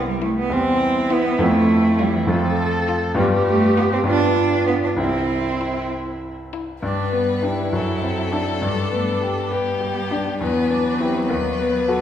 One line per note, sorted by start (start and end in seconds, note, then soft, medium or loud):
0.00 0.48 C2 soft
0.00 0.48 G3 soft
0.00 0.48 E4 soft
0.00 0.49 G4 soft
0.08 0.22 G3 medium
0.22 0.29 A3 medium
0.22 0.44 E4 soft
0.39 0.54 B3 medium
0.50 1.37 E2 soft
0.50 1.37 G3 soft
0.50 1.38 C4 soft
0.50 1.13 C4 medium
0.50 2.31 E4 medium
0.50 1.38 G4 soft
1.11 1.43 B3 medium
1.11 1.33 E4 medium
1.38 2.25 F2 medium
1.38 2.26 A3 soft
1.38 2.01 A3 medium
1.38 2.26 C4 soft
1.38 2.26 F4 soft
1.99 2.17 G3 medium
1.99 2.22 F4 medium
2.15 2.31 E3 medium
2.27 3.13 F2 medium
2.27 2.88 F3 medium
2.27 3.14 A3 soft
2.27 3.14 C4 soft
2.27 3.14 F4 soft
2.27 3.17 A4 medium
2.88 3.10 F4 medium
3.15 4.02 G2 medium
3.15 4.03 G3 medium
3.15 3.25 G3 medium
3.15 4.03 B3 soft
3.15 4.03 F4 medium
3.15 4.05 G4 medium
3.48 3.76 A3 medium
3.77 3.83 B3 medium
3.77 4.00 F4 medium
3.93 3.99 C4 medium
4.04 4.94 G2 soft
4.04 4.94 G3 soft
4.04 4.95 B3 soft
4.04 4.66 D4 medium
4.04 4.95 F4 soft
4.04 5.00 F4 medium
4.67 4.73 B3 medium
4.67 4.91 F4 soft
4.84 4.90 D4 medium
4.96 6.77 C2 soft
4.96 6.78 G3 soft
4.96 6.78 C4 soft
4.96 5.89 C4 medium
4.96 6.78 E4 soft
4.96 6.36 E4 medium
5.61 5.83 E4 soft
6.53 6.75 E4 soft
6.83 7.70 G2 medium
6.83 7.76 G3 soft
6.83 7.15 D4 soft
6.83 7.77 B4 soft
7.13 7.61 B3 soft
7.13 7.45 B3 soft
7.42 7.70 D4 soft
7.42 8.64 E4 soft
7.42 7.70 G4 soft
7.72 8.59 F#2 soft
7.72 8.63 F#3 soft
7.72 9.53 A4 soft
8.02 8.50 C4 soft
8.32 8.59 D4 soft
8.32 8.59 A4 soft
8.62 10.36 G2 medium
8.62 8.71 G3 soft
8.62 9.53 D4 soft
8.91 9.02 A3 soft
8.91 9.39 B3 soft
9.22 10.43 G3 soft
9.22 9.69 G4 soft
9.50 10.40 B3 soft
9.50 10.40 G4 soft
9.50 9.98 B4 soft
9.81 10.28 G4 soft
10.11 10.40 D4 soft
10.40 11.26 E2 medium
10.40 12.01 F#3 soft
10.40 10.71 B3 medium
10.40 11.27 B4 soft
10.70 11.17 B3 soft
10.70 11.00 D4 soft
10.99 11.30 C4 soft
10.99 11.26 E4 soft
10.99 11.26 G4 soft
11.28 12.01 D#2 soft
11.28 12.01 B3 soft
11.28 12.01 B4 soft
11.59 12.01 B3 soft
11.88 12.01 F#4 soft
11.88 12.01 A4 soft